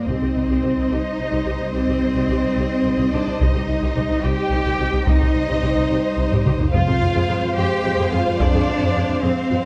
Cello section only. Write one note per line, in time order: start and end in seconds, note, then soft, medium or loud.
0.07 0.91 C4 medium
0.90 1.74 D#4 medium
1.74 3.10 C4 medium
3.13 3.41 D4 medium
3.41 4.24 D#4 medium
4.25 5.08 G4 medium
5.07 6.43 D#4 medium
6.73 7.53 F4 loud
7.57 8.12 G4 medium
8.12 8.39 F4 medium
8.40 9.23 D4 loud
9.23 9.65 C4 medium